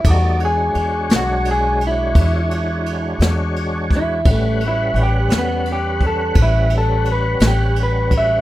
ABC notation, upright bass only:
X:1
M:12/8
L:1/8
Q:3/8=57
K:A
V:1 name="Upright bass" clef=bass
E,,2 E,, B,,,3 E,,3 E,,3 | A,,,2 A,,, E,,3 A,,,3 A,,,3 |]